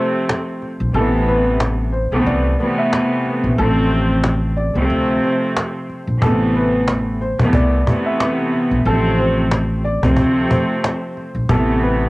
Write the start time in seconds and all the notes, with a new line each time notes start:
Already playing: C3 F3 A3 C4 C5
0.29 cajon slap
0.62 cajon slap
0.80 A#1
0.94 A1 C3 E3 A3 B3 A4, cajon slap
1.28 B4, cajon slap
1.60 cajon slap
1.92 C5, cajon slap
2.12 B1 C3 E3 A3 B3
2.26 C2 D5, cajon slap
2.58 C3 E3 A3 B3, cajon slap
2.78 E5
2.93 cajon slap
3.26 cajon slap
3.44 A#1
3.57 A1 C3 F3 A3 C4 A4, cajon slap
3.91 C5, cajon slap
4.24 cajon slap
4.57 D5, cajon slap
4.75 C2 C3 F3 A3 C4
4.90 D2, cajon slap
5.23 C5, cajon slap
5.57 cajon slap
5.89 cajon slap
6.07 A#1
6.22 A1 C3 E3 A3 B3 A4, cajon bass
6.55 B4, cajon slap
6.88 cajon slap
7.21 C5, cajon slap
7.39 B1 C3 E3 A3 B3, cajon bass
7.53 C2 D5, cajon bass
7.86 C3 E3 A3 B3, cajon bass
8.06 E5
8.20 cajon slap
8.53 cajon slap
8.71 A#1
8.85 A1 C3 F3 A3 C4 A4, cajon slap
9.19 C5, cajon slap
9.52 cajon slap
9.84 D5, cajon slap
10.03 C2 C3 F3 A3 C4, cajon bass
10.17 D2, cajon bass
10.51 C5, cajon bass
10.84 cajon slap
11.17 cajon slap
11.35 A#1
11.49 A1 C3 E3 A3 B3 A4, cajon bass
11.83 B4, cajon slap